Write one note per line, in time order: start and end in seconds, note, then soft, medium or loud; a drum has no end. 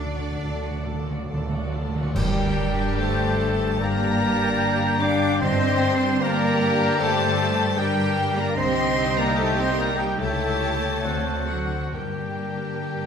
0.00 0.30 D2 medium
0.00 2.10 D3 medium
0.00 1.84 A3 medium
0.00 2.12 A3 soft
0.00 0.19 D4 medium
0.00 1.28 D4 medium
0.00 1.78 F#4 medium
0.00 0.19 A4 medium
0.00 2.17 A4 soft
0.00 0.18 D5 medium
0.00 1.29 D5 medium
0.00 0.18 A5 medium
0.06 0.14 D3 medium
0.15 0.22 D3 medium
0.15 0.40 A4 medium
0.15 0.40 F#5 soft
0.19 0.41 F#4 soft
0.19 0.41 D5 medium
0.23 0.30 D3 medium
0.31 0.38 D3 medium
0.38 1.18 D2 medium
0.38 0.46 D3 medium
0.38 0.62 D4 medium
0.38 0.62 A4 medium
0.38 0.60 D5 medium
0.38 0.60 A5 medium
0.47 0.54 D3 medium
0.55 0.62 D3 medium
0.60 0.69 D3 medium
0.60 0.86 F#4 medium
0.60 0.84 A4 medium
0.60 0.86 D5 soft
0.60 0.84 F#5 medium
0.71 0.77 D3 medium
0.79 0.85 D3 medium
0.83 0.93 D3 medium
0.83 1.07 D4 soft
0.83 1.07 A4 medium
0.83 1.06 D5 medium
0.83 1.06 A5 medium
0.94 1.01 D3 medium
1.02 1.09 D3 medium
1.07 1.17 D3 medium
1.07 1.29 F#4 medium
1.07 1.29 A4 soft
1.07 1.29 D5 medium
1.07 1.29 F#5 soft
1.18 1.25 D3 medium
1.26 2.06 D2 medium
1.26 1.33 D3 medium
1.26 1.50 A4 medium
1.26 1.48 D5 medium
1.26 1.48 A5 medium
1.30 1.50 D4 medium
1.34 1.41 D3 medium
1.42 1.48 D3 medium
1.49 1.56 D3 medium
1.49 1.73 F#4 medium
1.49 1.72 A4 medium
1.49 1.73 D5 soft
1.49 1.73 F#5 medium
1.57 1.64 D3 medium
1.65 1.71 D3 medium
1.72 1.79 D3 medium
1.72 1.95 D4 medium
1.72 1.95 A4 medium
1.72 1.94 D5 medium
1.72 1.94 A5 medium
1.81 1.87 D3 medium
1.88 1.95 D3 medium
1.93 2.02 D3 loud
1.93 2.16 F#4 medium
1.93 2.15 A4 medium
1.93 2.16 D5 medium
1.93 2.15 F#5 medium
2.03 2.11 D3 loud
2.12 3.35 G2 loud
2.12 5.37 G2 loud
2.12 2.93 G3 medium
2.12 3.75 D4 medium
2.12 2.95 G4 loud
2.12 3.01 A#4 medium
2.12 3.75 D5 medium
2.12 2.94 G5 loud
2.16 3.78 G2 medium
2.16 3.76 G3 medium
2.16 2.95 G3 loud
2.16 3.76 G4 medium
2.16 3.76 G5 medium
2.16 concert bass drum medium
2.16 crash medium
2.45 4.06 D3 medium
2.72 3.52 D4 medium
2.98 3.79 A3 medium
2.98 3.78 A3 medium
2.98 4.59 G4 medium
2.98 3.80 A4 loud
2.98 3.80 C5 loud
2.98 3.79 A5 loud
3.25 4.86 A#4 medium
3.53 4.32 D4 medium
3.78 5.40 G2 medium
3.78 5.37 G3 medium
3.78 5.00 A#3 loud
3.78 5.01 A#3 medium
3.78 5.37 D4 medium
3.78 5.38 G4 medium
3.78 5.01 A#4 loud
3.78 5.03 D5 loud
3.78 5.37 D5 medium
3.78 5.37 G5 medium
3.78 5.00 A#5 loud
4.07 5.44 D3 medium
4.33 5.13 D4 medium
4.60 6.19 G4 medium
4.87 8.61 A#4 medium
4.99 5.40 D4 loud
4.99 5.42 D4 loud
4.99 5.42 D5 loud
4.99 5.42 F5 loud
4.99 5.41 D6 loud
5.14 5.92 D4 medium
5.41 6.56 G2 loud
5.41 6.98 G2 medium
5.41 8.54 G2 loud
5.41 6.19 G3 medium
5.41 6.19 C4 loud
5.41 6.19 D4 medium
5.41 6.19 G4 medium
5.41 6.19 C5 loud
5.41 6.19 D5 medium
5.41 5.93 D#5 loud
5.41 6.19 G5 medium
5.41 6.19 C6 loud
5.67 7.25 D3 medium
6.19 7.75 G3 loud
6.19 6.99 A#3 loud
6.19 7.00 A#3 loud
6.19 7.75 D4 medium
6.19 7.76 G4 medium
6.19 7.75 G4 loud
6.19 7.00 A#4 loud
6.19 7.01 D5 loud
6.19 7.75 D5 loud
6.19 7.75 G5 loud
6.19 7.00 A#5 loud
6.47 7.50 D4 medium
6.72 8.30 G3 medium
6.97 8.60 G2 medium
6.97 7.76 A3 loud
6.97 7.78 A4 loud
6.97 7.80 C5 loud
6.97 7.75 A5 loud
7.01 7.78 A3 loud
7.26 8.61 D3 medium
7.52 8.03 D4 medium
7.77 8.37 G3 loud
7.77 8.36 G3 loud
7.77 8.56 G3 medium
7.77 8.56 D4 medium
7.77 8.55 G4 medium
7.77 9.37 G4 medium
7.77 8.37 G4 loud
7.77 8.39 A#4 loud
7.77 8.29 D5 medium
7.77 8.37 G5 loud
7.77 8.29 G5 medium
8.04 8.60 D4 medium
8.31 9.90 G3 medium
8.37 8.57 A#3 loud
8.37 8.57 A#4 medium
8.37 8.58 D5 loud
8.37 8.57 A#5 loud
8.55 10.19 C2 loud
8.55 10.22 C3 medium
8.55 10.16 G3 loud
8.55 9.16 C4 loud
8.55 9.18 C4 loud
8.55 10.19 D#4 medium
8.55 10.16 G4 loud
8.55 9.18 C5 loud
8.55 9.20 D#5 loud
8.55 10.15 D#5 loud
8.55 10.15 G5 loud
8.55 9.16 C6 loud
8.85 10.23 C4 medium
9.12 9.63 D#4 medium
9.17 9.37 A#3 loud
9.17 9.38 A#3 loud
9.17 9.38 A#4 loud
9.17 9.38 D5 loud
9.17 9.38 A#5 loud
9.37 9.57 A3 loud
9.37 9.58 A3 loud
9.37 10.75 G4 medium
9.37 9.58 A4 loud
9.37 9.60 C5 loud
9.37 9.58 A5 loud
9.56 9.77 C4 medium
9.56 9.78 C4 medium
9.56 9.78 C5 medium
9.56 9.80 D#5 medium
9.56 9.78 C6 loud
9.64 10.22 D#4 medium
9.74 9.96 A#3 medium
9.74 10.00 D5 medium
9.78 9.98 A#3 medium
9.78 9.98 A#4 medium
9.78 9.98 A#5 loud
9.96 10.18 G3 medium
9.96 10.19 G3 medium
9.96 10.20 G4 medium
9.96 10.17 A#4 medium
9.96 10.20 G5 medium
10.16 11.08 C#3 medium
10.16 11.46 A3 medium
10.16 11.45 A3 medium
10.16 11.04 E4 medium
10.16 11.49 C#5 loud
10.16 11.06 G5 medium
10.16 11.48 A5 loud
10.20 11.03 C#2 medium
10.20 11.05 A3 medium
10.20 11.03 G4 medium
10.20 11.48 A4 loud
10.20 11.06 E5 medium
10.47 11.98 A3 medium
10.76 11.08 E4 soft
10.76 11.08 G4 soft
11.04 11.95 D2 medium
11.04 11.98 D3 medium
11.04 11.93 C4 medium
11.04 11.93 D4 medium
11.04 11.92 F#4 medium
11.04 11.94 C5 medium
11.04 11.94 F#5 medium
11.33 11.98 C4 soft
11.45 11.78 F#3 medium
11.45 11.94 F#3 medium
11.45 11.95 F#4 medium
11.45 11.93 A4 medium
11.45 11.94 F#5 medium
11.63 12.58 D4 soft
11.63 11.98 F#4 soft
11.92 13.06 G2 medium
11.92 13.06 G3 medium
11.92 13.06 A#3 medium
11.92 13.06 D4 medium
11.92 13.06 G4 medium
11.92 13.06 A#4 medium
11.92 13.06 G5 medium
12.27 13.06 D3 soft
12.59 13.06 D4 soft
12.90 13.06 G4 soft